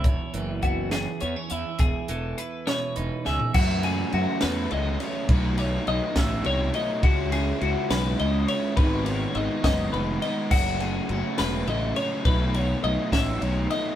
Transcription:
<<
  \new Staff \with { instrumentName = "Clean electric guitar" } { \time 6/8 \key fis \dorian \tempo 4. = 69 cis''8 b'8 fis'8 gis'8 cis''8 e''8 | gis'8 a'8 b'8 cis''8 b'8 e''8 | fis'8 gis'8 fis'8 b'8 dis''8 cis''8 | b'8 cis''8 dis''8 e''8 cis''8 dis''8 |
fis'8 gis'8 fis'8 b'8 dis''8 cis''8 | b'8 cis''8 dis''8 dis''8 b'8 dis''8 | fis'8 gis'8 fis'8 b'8 dis''8 cis''8 | b'8 cis''8 dis''8 e''8 cis''8 dis''8 | }
  \new Staff \with { instrumentName = "Overdriven electric guitar" } { \time 6/8 \key fis \dorian r2. | r2. | <fis, cis fis a cis'>8 <fis a cis'>8 <cis fis a cis'>8 <fis a cis'>8 <cis fis a cis'>8 <fis a cis'>8 | <b, fis a dis'>8 <fis a dis'>8 <b, fis a dis'>8 <fis a dis'>8 <b, fis a dis'>8 <fis a dis'>8 |
<cis gis cis' e'>8 <gis cis' e'>8 <cis gis cis' e'>8 <gis cis' e'>8 <cis gis cis' e'>8 <gis cis' e'>8 | <gis, dis gis b dis'>8 <gis b dis'>8 <dis gis b dis'>8 <gis b dis'>8 <dis gis b dis'>8 <gis b dis'>8 | <fis, cis fis a cis'>8 <fis a cis'>8 <cis fis a cis'>8 <fis a cis'>8 <cis fis a cis'>8 <fis a cis'>8 | <b, fis a dis'>8 <fis a dis'>8 <b, fis a dis'>8 <fis a dis'>8 <b, fis a dis'>8 <fis a dis'>8 | }
  \new Staff \with { instrumentName = "Clean electric guitar" } { \clef bass \time 6/8 \key fis \dorian << { e'4 b4 b16 cis'16 e'8~ | e'2 dis'8 gis'8 | r2. | r2. |
r2. | r2. | r2. | r2. | } \\ { <e, e>8 e4 e,4. | e,8 e4 b,4. | r2. | r2. |
r2. | r2. | r2. | r2. | } >> }
  \new Staff \with { instrumentName = "Fingered electric bass" } { \clef bass \time 6/8 \key fis \dorian e,,16 r16 fis,,4. e,16 r16 e,16 r16 | e,,16 r16 e,,8 r4 e,,16 r16 cis,16 r16 | fis,4 fis,16 r16 e,8 cis,8 r8 | b,,4 b,,16 r16 a,,8 c,8 r8 |
cis,4 cis,16 r16 b,,8 cis,8 r8 | gis,,4 gis,,16 r16 fis,,8 f,,8 r8 | fis,,4 fis,,16 r16 e,,8 a,,8 r8 | b,,4 b,,16 r16 a,,8 b,,8 r8 | }
  \new DrumStaff \with { instrumentName = "Drums" } \drummode { \time 6/8 <hh bd>8 hh8 <hh bd>8 <hh sn>8 hh8 hh8 | <hh bd>8 hh8 hh8 <hh sn>8 hh8 sn16 tomfh16 | <cymc bd>8 cymr8 cymr8 <cymr sn>8 cymr8 cymr8 | <bd cymr>8 cymr8 cymr8 <bd cymr sn>8 cymr8 cymr8 |
<bd cymr>8 cymr8 cymr8 <cymr sn>8 cymr8 cymr8 | <bd cymr>8 cymr8 cymr8 <bd cymr sn>8 cymr8 cymr8 | <cymc bd>8 cymr8 cymr8 <cymr sn>8 cymr8 cymr8 | <bd cymr>8 cymr8 cymr8 <bd cymr sn>8 cymr8 cymr8 | }
>>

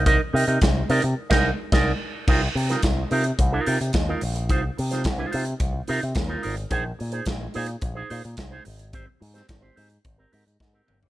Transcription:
<<
  \new Staff \with { instrumentName = "Clean electric guitar" } { \time 4/4 \key c \minor \tempo 4 = 108 <ees' bes' ees''>16 r16 <ees' bes' ees''>16 <ees' bes' ees''>16 r8 <ees' bes' d''>16 r8 <ees' bes' ees''>8 r16 <ees' bes' d''>8 r8 | <ees' f' bes'>16 r8 <ees' f' bes'>16 r8 <ees' f' bes'>16 r8 <ees' f' bes'>16 <ees' f' bes'>16 r8 <ees' f' bes'>16 r8 | <ees' f' c''>16 r8 <ees' f' c''>16 r16 <ees' f' c''>16 <ees' f' c''>16 r8. <ees' f' bes'>16 r8 <ees' f' bes'>16 <ees' f' bes'>16 r16 | <ees' aes' c''>16 r8 <ees' aes' c''>16 r8 <ees' aes' c''>16 r8 <ees' aes' c''>16 <ees' aes' c''>16 r8 <ees' aes' c''>16 r8 |
<c' g' c''>16 r8 <c' g' c''>16 r16 <c' g' c''>16 <c' g' c''>16 r8 <c' g' bes'>16 <c' g' bes'>16 r8 <c' g' bes'>16 <c' g' bes'>16 r16 | }
  \new Staff \with { instrumentName = "Picked electric bass" } { \clef bass \time 4/4 \key c \minor c,8 c16 c16 c,8 c16 c16 r16 c,8 r16 c,8 r8 | c,8 c8 c,8 c8 c,8 c16 c16 ees,8 bes,,8 | c,8 c8 c,8 c8 c,8 c16 c16 ees,8 aes,,8 | bes,,8 bes,8 bes,,8 bes,8 bes,,8 bes,16 bes,16 c,8 aes,,8~ |
aes,,8 aes,8 aes,,8 aes,8 aes,,8 aes,16 aes,16 aes,8 g,,8 | }
  \new DrumStaff \with { instrumentName = "Drums" } \drummode { \time 4/4 <hh bd>8 hho16 hh16 <hh bd sn>8 hho16 hh16 r16 <cymc bd sn>8. <cymc bd sn>4 | <cymc bd>8 hho16 <hh sn>16 <hh bd sn>8 hho16 hh16 <hh bd>8 hho16 hh16 <hh bd sn>8 hho16 hh16 | <hh bd>8 hho16 <hh sn>16 <hh bd sn>8 hho16 hh16 <hh bd>8 hho16 hh16 <hh bd sn>8 hho16 hh16 | <hh bd>8 hho16 hh16 <hh bd sn>8 hho16 hh16 <hh bd>8 hho16 hh16 <hh bd sn>8 hho16 hh16 |
<hh bd>8 hho16 <hh sn>16 <hh bd sn>8 hho16 hh16 <hh bd>8 hho16 hh16 <bd sn>8 toml16 tomfh16 | }
>>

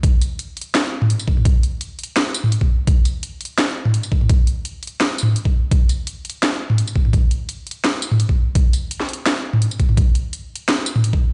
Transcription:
\new DrumStaff \with { instrumentName = "Drums" } \drummode { \time 4/4 \tempo 4 = 169 <hh bd>8 <hh tamb>8 hh8 hh32 hh16. <hh sn>8. toml16 hh16 tamb16 bd16 toml16 | <hh bd>8 hh8 hh8 hh32 hh16. <hh sn>8 tamb16 toml16 hh16 bd8. | <hh bd>8 <hh tamb>8 hh8 hh32 hh16. <hh sn>8. toml16 hh16 tamb16 bd16 toml16 | <hh bd>8 hh8 hh8 hh32 hh16. <hh sn>8 tamb32 toml16. hh16 bd8. |
<hh bd>8 <hh tamb>8 hh8 hh32 hh16. <hh sn>8. toml16 hh16 tamb16 bd16 toml16 | <hh bd>8 hh8 hh8 hh32 hh16. <hh sn>8 tamb16 toml16 hh16 bd8. | <hh bd>8 <hh tamb>8 hh16 sn16 hh32 hh16. <hh sn>8. toml16 hh16 tamb16 <hh bd>16 toml16 | <hh bd>8 hh8 hh8 r32 hh16. <hh sn>8 tamb16 toml16 hh16 bd8. | }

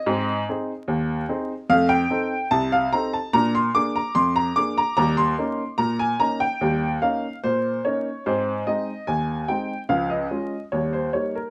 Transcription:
\new Staff \with { instrumentName = "Upright piano" } { \time 2/4 \key aes \major \tempo 4 = 73 << { ees''8 r4. | f''16 g''8. a''16 f''16 bes''16 a''16 | bes''16 c'''16 d'''16 bes''16 c'''16 bes''16 d'''16 bes''16 | bes''16 c'''8. bes''16 aes''16 bes''16 g''16~ |
g''8 f''8 c''8 des''8 | c''8 ees''8 aes''8 g''8 | f''16 ees''8. des''16 c''16 des''16 bes'16 | } \\ { <aes, c'>8 <c' ees' aes'>8 ees,8 <c' ees' aes'>8 | <f, a>8 <c' ees' a'>8 c,8 <c' ees' a'>8 | <bes, d'>8 <bes d' aes'>8 f,8 <bes d' aes'>8 | <ees, g>8 <bes des' ees'>8 bes,8 <bes des' ees'>8 |
<ees, g>8 <bes des' ees'>8 bes,8 <bes des' ees'>8 | <aes, c'>8 <aes c' ees'>8 ees,8 <aes c' ees'>8 | <des, f>8 <aes des' f'>8 <ees, g>8 <g bes ees'>8 | } >> }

